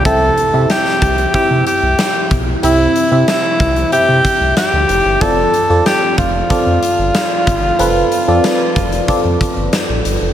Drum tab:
HH |x-x-x-xxx-x-x-x-|x-x-x-xxx-x-x-x-|x-x-x-x-x-x-x-x-|x-x-x-xxx-x-x-x-|
SD |----o-------o---|----o-------o---|----o-------o---|----o-------o---|
BD |o-----o-o-----o-|------o---o-----|o-----o-o-----o-|------o-o-o-----|